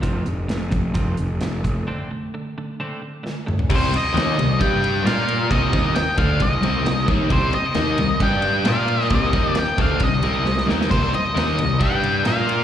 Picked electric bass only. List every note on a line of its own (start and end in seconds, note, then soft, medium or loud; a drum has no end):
0.03 0.22 F1 medium
0.27 0.46 F1 medium
0.50 0.69 F1 medium
0.73 0.91 F1 medium
0.95 1.14 F1 medium
1.20 1.38 F1 medium
1.42 1.60 F1 medium
1.64 1.83 F1 medium
3.70 3.91 C2 medium
3.92 muted picked electric bass stroke soft
4.14 4.36 D#2 medium
4.38 4.59 C2 medium
4.60 5.02 G2 medium
5.05 5.47 A#2 medium
5.51 5.72 C2 medium
5.73 5.94 D#2 medium
6.18 6.39 D2 medium
6.41 6.62 C2 medium
6.64 6.84 C2 loud
6.84 7.06 C2 medium
7.08 7.29 D#2 medium
7.30 7.51 C2 medium
7.53 muted picked electric bass stroke soft
7.75 7.96 D#2 medium
7.98 8.19 C2 medium
8.21 8.63 G2 medium
8.65 9.07 A#2 medium
9.10 9.31 C2 medium
9.34 9.54 D#2 medium
9.79 9.99 D2 medium
10.00 10.21 C2 medium
10.23 10.44 C2 medium
10.46 10.67 C2 medium
10.68 10.89 D#2 medium
10.92 11.12 C2 medium
11.14 muted picked electric bass stroke soft
11.36 11.57 D#2 medium
11.59 11.79 C2 medium
11.81 12.23 G2 medium
12.26 12.64 A#2 loud